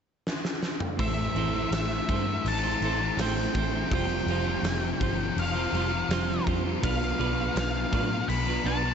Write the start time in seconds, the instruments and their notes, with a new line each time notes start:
0.27 snare
0.45 snare
0.63 snare
0.80 mid tom
0.98 picked electric bass A1, overdriven electric guitar A2 A3 C4 E4 C5, distorted electric guitar A2 E3 A3, lead electric guitar E5, kick, crash
1.35 picked electric bass A1, overdriven electric guitar A2 A3 C4 E4 C5, distorted electric guitar A2 E3 A3, crash
1.53 distorted electric guitar E3 A3, overdriven electric guitar C4 E4 C5
1.71 picked electric bass A1, distorted electric guitar A2 E3 A3, lead electric guitar E5, snare, tambourine, crash
2.08 picked electric bass G2, distorted electric guitar A2 E3 A3, overdriven electric guitar A3 C4 E4 C5, kick, crash
2.27 muted overdriven electric guitar stroke
2.45 picked electric bass A1, lead electric guitar A5, crash
2.63 distorted electric guitar E3 A3, overdriven electric guitar C4 E4 C5
2.81 picked electric bass A1, distorted electric guitar A2 E3 A3, overdriven electric guitar A3 C4 E4, crash
2.85 overdriven electric guitar C5
3.01 distorted electric guitar E3 A3, muted overdriven electric guitar stroke
3.17 picked electric bass A1, distorted electric guitar A2 E3 A3, overdriven electric guitar A2 A3 C4 E4, lead electric guitar G5, snare, tambourine, crash
3.22 overdriven electric guitar C5
3.36 distorted electric guitar E3 A3, snare
3.54 picked electric bass A1, distorted electric guitar A2 E3 A3, overdriven electric guitar A3 C4, kick, crash
3.58 overdriven electric guitar E4 C5
3.72 distorted electric guitar E3 A3, overdriven electric guitar E4 C5
3.76 overdriven electric guitar C4
3.90 picked electric bass F1, distorted electric guitar F2 C3 F3, overdriven electric guitar F3 G3 C4, lead electric guitar G5, kick, crash
3.94 overdriven electric guitar F4 C5
4.26 picked electric bass F1, distorted electric guitar F2 C3 F3, overdriven electric guitar F3 G3 C4, crash
4.31 overdriven electric guitar F4 C5
4.45 distorted electric guitar C3 F3, overdriven electric guitar C4 F4 C5
4.63 picked electric bass F1, distorted electric guitar F2 C3 F3, snare, tambourine, crash
4.99 picked electric bass G1, distorted electric guitar F2 C3 F3, overdriven electric guitar G3 C4 F4 C5, kick, crash
5.19 muted overdriven electric guitar stroke
5.37 picked electric bass F1, lead electric guitar F5, crash
5.55 distorted electric guitar C3 F3, overdriven electric guitar C4 F4 C5
5.73 picked electric bass F1, distorted electric guitar F2 C3 F3, overdriven electric guitar G3 C4 F4 C5, crash
5.93 distorted electric guitar C3 F3, muted overdriven electric guitar stroke
6.09 picked electric bass F1, distorted electric guitar F2 C3 F3, overdriven electric guitar F3 G3 C4 F4, snare, tambourine, crash
6.13 overdriven electric guitar C5
6.29 distorted electric guitar C3 F3, snare
6.46 picked electric bass F2, distorted electric guitar F2 C3 F3, overdriven electric guitar G3 C4 F4 C5, kick, crash
6.64 distorted electric guitar C3 F3, overdriven electric guitar C4 F4 C5
6.82 picked electric bass B1, distorted electric guitar B2 F#3 B3, overdriven electric guitar B3 D4 F4 B4, lead electric guitar F5, kick, crash
7.18 picked electric bass B1, distorted electric guitar B2 F#3 B3, overdriven electric guitar B3 D4 F4 B4, crash
7.37 distorted electric guitar F#3 B3, overdriven electric guitar D4 F4 B4
7.55 picked electric bass B1, distorted electric guitar B2 F#3 B3, lead electric guitar F5, snare, tambourine, crash
7.91 picked electric bass A2, distorted electric guitar B2 F#3 B3, overdriven electric guitar B3 D4 F4 B4, kick, crash
8.12 muted overdriven electric guitar stroke
8.28 picked electric bass B1, lead electric guitar B5, crash
8.47 distorted electric guitar F#3 B3, overdriven electric guitar D4 F4 B4
8.64 picked electric bass B1, distorted electric guitar B2 F#3 B3, overdriven electric guitar B3 D4 F4 B4, lead electric guitar A5, crash
8.84 distorted electric guitar F#3 B3, muted overdriven electric guitar stroke